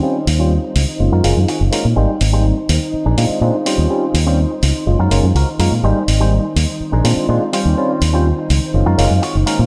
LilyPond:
<<
  \new Staff \with { instrumentName = "String machine" } { \time 4/4 \key ees \mixolydian \tempo 4 = 124 <ees' c''>1~ | <ees' c''>1~ | <ees' c''>1 | <ees' c''>1~ |
<ees' c''>1 | }
  \new Staff \with { instrumentName = "Clean electric guitar" } { \time 4/4 \key ees \mixolydian <des' f' g' c''>8 r16 <des' f' g' c''>16 r4 r16 <f' ges' bes'>16 r8 <f' ges' aes'>16 r16 <f' ges' bes'>16 r16 | <g' aes' c''>8 r16 <g' aes' c''>16 r4 r16 <d' aes' bes'>16 r8 <d' aes' bes'>16 r16 <des' f' g' c''>8~ | <des' f' g' c''>8 r16 <des' f' g' c''>16 r4 r16 <f' ges' bes'>16 r8 <f' ges' bes'>16 r16 <f' ges' bes'>16 r16 | <g' aes' c''>8 r16 <g' aes' c''>16 r4 r16 <d' aes' bes'>16 r8 <d' aes' c''>16 r16 <des' f' g' c''>8~ |
<des' f' g' c''>8 r16 <des' f' g' c''>16 r4 r16 <f' ges' bes'>16 r8 <f' ges' des''>16 r16 <f' ges' bes'>16 r16 | }
  \new Staff \with { instrumentName = "Tine electric piano" } { \time 4/4 \key ees \mixolydian <g c' des' f'>16 r8 <g c' des' f'>16 r4 <aes bes des' f'>8 <aes bes des' f'>16 r8. <aes bes des' f'>16 r16 | <g bes c' ees'>16 r8 <g bes c' ees'>8 r4 r16 <aes c' d' f'>8 <aes c' d' f'>16 r16 <g c' des' f'>8 | <g c' des' f'>16 r8 <g c' des' f'>16 r4 <aes bes des' f'>8 <aes bes des' f'>16 r8. <aes bes des' f'>16 r16 | <g bes c' ees'>16 r8 <g bes c' ees'>8 r4 r16 <aes c' d' f'>8 <aes c' d' f'>16 r16 <g c' des' f'>8 |
<g c' des' f'>16 r8 <g c' des' f'>16 r4 <aes bes des' f'>8 <aes bes des' f'>16 r8. <aes bes des' f'>16 r16 | }
  \new Staff \with { instrumentName = "Fingered electric bass" } { \clef bass \time 4/4 \key ees \mixolydian r8 ees,8 r8 des,16 r16 ges,,16 ges,16 ges,,16 ges,16 r16 ges,,16 r16 bes,16 | aes,,16 r16 aes,,8 r8 ees,16 r8 bes,,16 bes,16 r16 bes,16 r8 ees,16 | r8 ees,8 r8 des,16 r16 ges,,16 ges,16 ges,,16 ges,16 des,16 r16 ges,16 bes,16 | aes,,16 r16 aes,,8 r8 ees,16 r8 bes,,16 bes,16 r16 bes,16 r8 ees,16 |
r8 ees,8 r8 des,16 r16 ges,,16 ges,16 ges,,16 ges,16 r16 ges,,16 r16 bes,16 | }
  \new DrumStaff \with { instrumentName = "Drums" } \drummode { \time 4/4 r8 hho8 r8 hho8 r8 hho8 hho8 hho8 | r8 hho8 r8 hho8 r8 hho8 r8 hho8 | r8 hho8 r8 hho8 r8 hho8 hho8 hho8 | r8 hho8 r8 hho8 r8 hho8 r8 hho8 |
r8 hho8 r8 hho8 r8 hho8 hho8 hho8 | }
>>